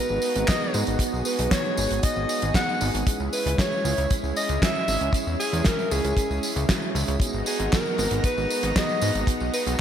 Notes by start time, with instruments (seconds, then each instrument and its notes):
Already playing: analog synth pad G#3 B3 D#4 F#4 A#5, alto saxophone B4
0.09 analog synth bass G#1, tine electric piano B3 D#4 F#4 G#4, tambourine
0.22 open hi-hat, tambourine
0.36 analog synth bass G#1, closed hi-hat, tambourine
0.48 tine electric piano B3 F#4 G#4, alto saxophone D#5, kick, snare, clap, closed hi-hat, tambourine
0.62 tambourine
0.74 analog synth bass G#2, tine electric piano B3 D#4 F#4 G#4, open hi-hat, tambourine
0.87 analog synth bass G#1, closed hi-hat, tambourine
0.99 tine electric piano B3 D#4 F#4 G#4, analog synth pad G#4, kick, closed hi-hat, tambourine
1.13 analog synth bass B1, tambourine
1.25 alto saxophone B4, open hi-hat, tambourine
1.39 analog synth bass B1, tine electric piano B3 D#4 F#4 G#4, closed hi-hat, tambourine
1.51 alto saxophone C#5, kick, snare, clap, closed hi-hat, tambourine
1.64 tambourine
1.77 analog synth bass G#1, tine electric piano B3 D#4 F#4 G#4, open hi-hat, tambourine
1.91 analog synth bass G#1, closed hi-hat, tambourine
2.03 alto saxophone D#5, kick, closed hi-hat, tambourine
2.16 analog synth bass G#1, tine electric piano B3 D#4 F#4 G#4, tambourine
2.29 open hi-hat, tambourine
2.42 analog synth bass G#1, closed hi-hat, tambourine
2.54 tine electric piano B3 D#4 F#4 G#4, alto saxophone F#5, kick, snare, clap, closed hi-hat, tambourine
2.69 tambourine
2.81 analog synth bass G#1, tine electric piano B3 D#4 F#4 G#4, open hi-hat, tambourine
2.94 analog synth bass G#1, closed hi-hat, tambourine
3.07 tine electric piano G#3 C#4 E4 G#4, analog synth pad G#3 C#4 E4, kick, closed hi-hat, tambourine
3.20 analog synth bass C#2, tambourine
3.33 alto saxophone B4, open hi-hat, tambourine
3.46 analog synth bass C#2, tine electric piano G#3 C#4 E4 G#4, closed hi-hat, tambourine
3.58 alto saxophone C#5, kick, snare, clap, closed hi-hat, tambourine
3.72 tambourine
3.85 analog synth bass C#2, tine electric piano G#3 C#4 E4 G#4, open hi-hat, tambourine
3.98 analog synth bass C#2, closed hi-hat, tambourine
4.10 kick, closed hi-hat, tambourine
4.23 analog synth bass C#2, tine electric piano G#3 C#4 E4 G#4, tambourine
4.36 alto saxophone D#5, open hi-hat, tambourine
4.49 analog synth bass C#2, closed hi-hat, tambourine
4.62 tine electric piano G#3 C#4 E4 F#4, alto saxophone E5, kick, snare, clap, closed hi-hat, tambourine
4.75 tambourine
4.88 analog synth bass G#1, tine electric piano G#3 C#4 E4 G#4, open hi-hat, tambourine
5.01 analog synth bass C#2, closed hi-hat, tambourine
5.13 tine electric piano G#3 C#4 E4 G#4, kick, closed hi-hat, tambourine
5.27 analog synth bass E2, tambourine
5.40 alto saxophone G#4, open hi-hat, tambourine
5.53 analog synth bass E2, tine electric piano G#3 C#4 E4 G#4, closed hi-hat, tambourine
5.65 alto saxophone A#4, kick, snare, clap, closed hi-hat, tambourine
5.79 tambourine
5.91 analog synth bass C#2, tine electric piano G#3 C#4 E4 G#4, alto saxophone G#4, open hi-hat, tambourine
6.04 analog synth bass C#2, closed hi-hat, tambourine
6.17 kick, closed hi-hat, tambourine
6.30 analog synth bass C#2, tine electric piano G#3 C#4 E4 G#4, tambourine
6.43 open hi-hat, tambourine
6.56 analog synth bass C#2, closed hi-hat, tambourine
6.69 tine electric piano G#3 C#4 E4 F#4, kick, snare, clap, closed hi-hat, tambourine
6.82 tambourine
6.95 analog synth bass C#2, tine electric piano G#3 C#4 E4 G#4, open hi-hat, tambourine
7.08 analog synth bass C#2, closed hi-hat, tambourine
7.20 analog synth pad G#3 B3 D#4 F#4 A#5, tine electric piano B3 D#4 F#4 G#4, kick, closed hi-hat, tambourine
7.34 analog synth bass G#1, tambourine
7.46 alto saxophone G#4, open hi-hat, tambourine
7.59 analog synth bass G#1, tine electric piano B3 D#4 F#4 G#4, closed hi-hat, tambourine
7.72 alto saxophone A#4, kick, snare, clap, closed hi-hat, tambourine
7.86 tambourine
7.98 analog synth bass G#1, tine electric piano B3 D#4 F#4 G#4, open hi-hat, tambourine
8.11 analog synth bass G#1, closed hi-hat, tambourine
8.24 alto saxophone B4, kick, closed hi-hat, tambourine
8.37 analog synth bass G#1, tine electric piano B3 D#4 F#4 G#4, tambourine
8.50 open hi-hat, tambourine
8.63 analog synth bass G#1, closed hi-hat, tambourine
8.76 tine electric piano B3 D#4 F#4 G#4, alto saxophone D#5, kick, snare, clap, closed hi-hat, tambourine
8.89 tambourine
9.01 analog synth bass G#2, tine electric piano B3 D#4 F#4 G#4, open hi-hat, tambourine
9.15 analog synth bass G#1, closed hi-hat, tambourine
9.27 tine electric piano B3 D#4 F#4 G#4, kick, closed hi-hat, tambourine
9.40 analog synth bass B1, tambourine
9.54 alto saxophone B4, open hi-hat, tambourine
9.66 analog synth bass B1, tine electric piano B3 D#4 F#4 G#4, closed hi-hat, tambourine